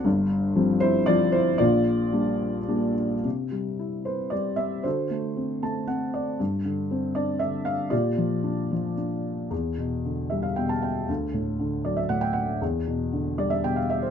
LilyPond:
<<
  \new Staff \with { instrumentName = "Felt piano" } { \time 3/4 \key c \major \tempo 4 = 115 << { r2. | r2. | r2. | r4. a''8 fis''8 d''8 |
r2. | r2. | r2. | r2. |
r2. | } \\ { r4. <e' c''>8 <f' d''>8 <e' c''>8 | <f' d''>2~ <f' d''>8 r8 | r4. c''8 d''8 e''8 | <fis' a' c''>2 r4 |
r4. d''8 e''8 f''8 | <f' g' d''>2 r4 | r4. e''16 f''16 g''16 a''16 g''8 | r4. d''16 e''16 fis''16 g''16 fis''8 |
r4. d''16 e''16 g''16 f''16 e''16 c''16 | } >> }
  \new Staff \with { instrumentName = "Felt piano" } { \clef bass \time 3/4 \key c \major <g,, g,>4 <f g c'>4 <f g c'>4 | <bes,, bes,>4 <g bes d'>4 <g bes d'>4 | c8 g8 e'8 b'8 g4 | d8 a8 c'8 a8 c'4 |
g,8 d8 c'8 d'8 d4 | bes,8 f8 d'8 f8 d'4 | e,8 b,8 d8 g8 b,4 | d,8 a,8 d8 fis8 a,4 |
e,8 b,8 d8 g8 b,4 | }
>>